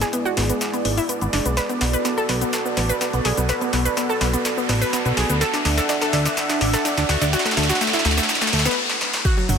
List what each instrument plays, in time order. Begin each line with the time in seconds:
Already playing: analog synth pad G#3 E4 G#4 D5, riser
0.01 synth pluck G#4, snare, closed hi-hat, shaker
0.13 synth pluck B3, closed hi-hat, shaker
0.25 synth pluck F#4, shaker
0.37 analog synth bass G#1, synth pluck B3, snare, open hi-hat
0.49 synth pluck B3, closed hi-hat, shaker
0.61 snare, closed hi-hat, shaker
0.73 synth pluck B3, closed hi-hat, shaker
0.85 analog synth bass G#1, synth pluck B3, open hi-hat
0.97 synth pluck E4, open hi-hat, shaker
1.09 synth pluck B3, closed hi-hat, shaker
1.21 analog synth bass G#1, synth pluck B3, closed hi-hat, shaker
1.33 analog synth bass F#1, synth pluck D4, snare, open hi-hat
1.45 analog synth bass B1, synth pluck B3, closed hi-hat, shaker
1.57 analog synth pad B3 F#4 A4, synth pluck B4, snare, closed hi-hat, shaker
1.69 synth pluck B3, closed hi-hat, shaker
1.81 analog synth bass B1, synth pluck B3, snare, open hi-hat
1.93 synth pluck B4, closed hi-hat, shaker
2.05 synth pluck B3, snare, closed hi-hat, shaker
2.18 synth pluck A4, shaker
2.29 analog synth bass B1, synth pluck B3, snare, open hi-hat
2.41 synth pluck B3, closed hi-hat, shaker
2.53 snare, closed hi-hat, shaker
2.65 synth pluck B3, shaker
2.77 analog synth bass A1, synth pluck B3, snare, open hi-hat
2.89 synth pluck B4, closed hi-hat, shaker
3.01 synth pluck B3, snare, closed hi-hat, shaker
3.13 analog synth bass B1, synth pluck B3, closed hi-hat, shaker
3.25 analog synth bass B1, synth pluck G#4, snare, open hi-hat
3.37 analog synth bass B1, synth pluck B3, closed hi-hat, shaker
3.49 synth pluck B4, snare, closed hi-hat, shaker
3.61 synth pluck B3, closed hi-hat, shaker
3.73 analog synth bass B1, synth pluck B3, snare, open hi-hat
3.85 synth pluck B4, closed hi-hat, shaker
3.97 synth pluck B3, snare, closed hi-hat, shaker
4.09 synth pluck A4, shaker
4.21 analog synth bass B1, synth pluck B3, snare, open hi-hat
4.33 synth pluck B3, closed hi-hat, shaker
4.45 snare, closed hi-hat, shaker
4.58 synth pluck B3, shaker
4.69 analog synth bass A1, synth pluck B3, snare, open hi-hat
4.81 synth pluck B4, open hi-hat, shaker
4.93 synth pluck B3, snare, closed hi-hat, shaker
5.05 analog synth bass B1, synth pluck B3, closed hi-hat, shaker
5.17 analog synth bass B1, synth pluck G#4, snare, open hi-hat
5.29 analog synth bass D2, synth pluck B3, closed hi-hat, shaker
5.41 analog synth pad D4 E5 F#5, synth pluck A4, snare, closed hi-hat, shaker
5.54 synth pluck D4, snare, closed hi-hat, shaker
5.65 analog synth bass D2, synth pluck D4, snare, open hi-hat
5.78 synth pluck A4, snare, closed hi-hat, shaker
5.89 synth pluck D4, snare, closed hi-hat, shaker
6.01 synth pluck A4, snare, shaker
6.13 analog synth bass D2, synth pluck D4, snare, open hi-hat
6.25 synth pluck D4, snare, closed hi-hat, shaker
6.37 snare, closed hi-hat, shaker
6.49 synth pluck D4, snare, shaker
6.61 analog synth bass A1, synth pluck D4, snare, open hi-hat
6.73 synth pluck A4, snare, closed hi-hat, shaker
6.85 synth pluck D4, snare, closed hi-hat, shaker
6.97 analog synth bass D2, synth pluck D4, snare, closed hi-hat, shaker
7.09 analog synth bass D2, synth pluck F#4, snare, open hi-hat
7.21 analog synth bass D2, synth pluck D4, snare, closed hi-hat, shaker
7.33 synth pluck F#4, snare, closed hi-hat, shaker
7.39 snare
7.45 synth pluck A3, snare, closed hi-hat, shaker
7.51 snare
7.57 analog synth bass D2, synth pluck A3, snare, open hi-hat
7.63 snare
7.69 synth pluck F#4, snare, closed hi-hat, shaker
7.75 snare
7.81 synth pluck A3, snare, closed hi-hat, shaker
7.87 snare
7.93 synth pluck E4, snare, closed hi-hat, shaker
7.99 snare
8.05 analog synth bass D2, synth pluck A3, snare, open hi-hat
8.11 snare
8.17 synth pluck A3, snare, closed hi-hat, shaker
8.23 snare
8.29 snare, closed hi-hat, shaker
8.35 snare
8.41 synth pluck A3, snare, closed hi-hat, shaker
8.47 snare
8.53 analog synth bass D2, synth pluck A3, snare, open hi-hat
8.59 snare
8.65 synth pluck B3, snare, open hi-hat, shaker
8.71 snare
8.89 snare
9.01 snare
9.13 snare
9.25 analog synth pad E4 F#4 A4, synth pluck F#4, kick, closed hi-hat, crash, shaker
9.37 synth pluck F#3, closed hi-hat, shaker
9.49 analog synth bass F#1, synth pluck F#3, mid tom, open hi-hat, high conga, shaker